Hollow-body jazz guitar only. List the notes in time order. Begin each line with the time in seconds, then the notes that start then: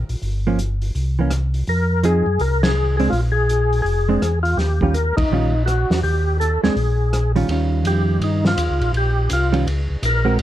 0.47 F3 A#3 C#4
1.19 E3 A#3 C#4
2.03 F3 C4 D#4 G#4
3.00 G#3 C4 D4
4.09 G#3 C4 D4
4.82 D#3 G3 C#4 F4
5.32 D#3 G3 C#4 F4
6.64 G#3 C4 D4
7.36 D#3 G3 C#4 F4
7.50 D#3 G3 C#4 F4
9.52 D#3 G3 C#4 F4
10.25 G#3 C4 F#4 A#4